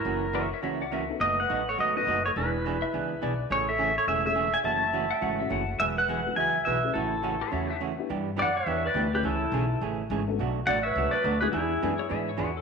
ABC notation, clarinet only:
X:1
M:4/4
L:1/8
Q:"Swing" 1/4=209
K:A
V:1 name="Clarinet"
E3 z4 z | B B2 A B B2 A | E6- E z | A A2 A A A2 e |
e6- e z | B B3 e2 B2 | E6 z2 | z2 d B2 B2 =G |
E4 z4 | z2 d B2 B2 F | E4 z4 |]